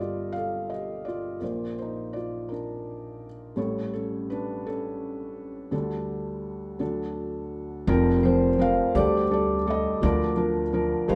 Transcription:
Already playing: felt piano G1 G2 G3 A#3 G4 A4 D5 D#5 F5
0.01 felt piano F4
0.32 felt piano F5
0.37 felt piano A4
0.70 felt piano D#5
0.74 felt piano G4
1.05 felt piano F4 D5
1.40 felt piano A#1 A#2 A#3 C5 D5
1.79 felt piano D#4 C5
2.13 felt piano F4 D5
2.49 felt piano D4 A#4
3.56 felt piano A1 A2 G3 A4 C#5
3.93 felt piano C#4 A4
4.30 felt piano D4 B4
4.66 felt piano C#4 A4
5.71 felt piano D2 D3 G3 D4 A4
6.79 felt piano D2 D3 F#3 D4 A4
7.87 upright bass F1, felt piano F1 F2 F3 C4 A#4
8.23 felt piano F3 C4 A#4 C5, vibraphone C5
8.58 felt piano F3 C4 A#4 F5
8.95 upright bass D2, felt piano D2 D3 G3 D4 G4 A4 D5, vibraphone D6
9.31 felt piano G3 D4 A4 D5
9.67 felt piano G3 A3 A4 D#5
10.01 felt piano D2 D3 F3 D4 F4 A#4 D5, upright bass D2
10.36 felt piano F3 D4 A#4
10.73 felt piano F3 D4 A#4
11.08 felt piano D#2 D#3 G3 D#4 C5, upright bass D#2, vibraphone F5

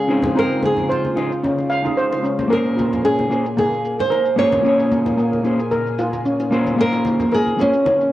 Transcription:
Already playing: analog synth pad C#3 G#3 F4, nylon-string guitar G#4
0.08 steel pan C4, clean electric guitar C#4 D#4 F4 G#4 C5, shaker
0.23 closed hi-hat, high bongo, high conga, low conga, shaker
0.35 steel pan C4, clean electric guitar D#4 F4 G#4, nylon-string guitar A#4, shaker
0.39 clean electric guitar C5
0.51 closed hi-hat, shaker
0.63 nylon-string guitar G#4, high bongo, high conga, shaker
0.77 closed hi-hat, low conga, shaker
0.89 nylon-string guitar F4, steel pan C5, shaker
1.05 high conga, shaker
1.16 clean electric guitar C#4 D#4 F4 G#4 C5, steel pan F4, high bongo, shaker
1.32 closed hi-hat, shaker
1.43 steel pan C#4, high conga, shaker
1.58 high bongo, shaker
1.70 steel pan F5, shaker
1.82 clean electric guitar C#4 D#4 F4, closed hi-hat, high conga, shaker
1.87 clean electric guitar G#4
1.97 steel pan C5, shaker
2.12 closed hi-hat, high bongo, shaker
2.23 steel pan C#4, shaker
2.39 closed hi-hat, high conga, shaker
2.48 analog synth pad A#2 A#3 G#4, clean electric guitar A#3 C#4 F4, steel pan A#4, shaker
2.52 clean electric guitar G#4 C5, nylon-string guitar A#4
2.65 closed hi-hat, high bongo, shaker
2.77 steel pan F4, high conga, shaker
2.93 closed hi-hat, low conga, shaker
3.04 steel pan C#4, nylon-string guitar G#4, shaker
3.19 high bongo, high conga, shaker
3.29 clean electric guitar A#3 C#4 F4 G#4 C5, steel pan A#3, shaker
3.46 closed hi-hat, shaker
3.57 steel pan A#3, nylon-string guitar G#4, high bongo, high conga, shaker
3.73 shaker
3.85 shaker
3.99 nylon-string guitar C5, closed hi-hat, high conga, shaker
4.10 steel pan A#4, high bongo, shaker
4.25 closed hi-hat, shaker
4.36 clean electric guitar A#3 C#4 F4 G#4 C5, steel pan F4, nylon-string guitar C#5, shaker
4.52 closed hi-hat, high bongo, high conga, low conga, shaker
4.62 clean electric guitar A#3 C#4 F4, steel pan C#4, shaker
4.66 clean electric guitar G#4 C#5
4.80 closed hi-hat, shaker
4.92 steel pan A#3, high conga, shaker
5.06 closed hi-hat, high bongo, low conga, shaker
5.18 steel pan A#3, shaker
5.33 high conga, shaker
5.44 clean electric guitar A#3 C#4 F4 G#4 C5, high bongo, shaker
5.60 closed hi-hat, shaker
5.71 steel pan A#4, high conga, shaker
5.87 shaker
5.99 steel pan F4, high bongo, shaker
6.13 closed hi-hat, high conga, shaker
6.25 steel pan C#4, shaker
6.40 closed hi-hat, high bongo, shaker
6.51 clean electric guitar A#3 C#4 F4 G#4 C5, steel pan A#3, shaker
6.67 closed hi-hat, high conga, shaker
6.76 clean electric guitar A#3 C#4 F4, steel pan A#3, shaker
6.80 clean electric guitar G#4 C5, nylon-string guitar A#4
6.93 closed hi-hat, high bongo, shaker
7.05 high conga, shaker
7.20 closed hi-hat, low conga, shaker
7.32 nylon-string guitar G#4, steel pan A#4, high bongo, shaker
7.47 high conga, shaker
7.58 clean electric guitar A#3 C#4 F4 G#4 C5, nylon-string guitar C#4, steel pan F4, shaker
7.74 closed hi-hat, shaker
7.86 steel pan C#4, high bongo, high conga, shaker
8.01 shaker

